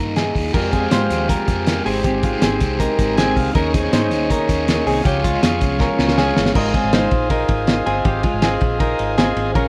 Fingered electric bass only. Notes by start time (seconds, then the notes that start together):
Already playing: G2
0.35 D#2
0.54 F2
0.92 G#2
1.10 D#2
1.48 F2
1.86 G#1
2.42 G#1
2.61 C2
2.99 G#1
3.37 C#2
3.55 D#2
3.93 G#2
4.12 D#2
4.49 D#2
4.86 C2
5.05 C#2
5.43 F2
5.62 C2
5.99 C#2
6.37 G1
6.55 G#1
6.84 G#1
7.12 A#1
7.49 G#1
7.86 G1
8.05 G#1
8.34 G#1
8.62 A#1
9.00 G#1
9.37 G#1
9.55 A#1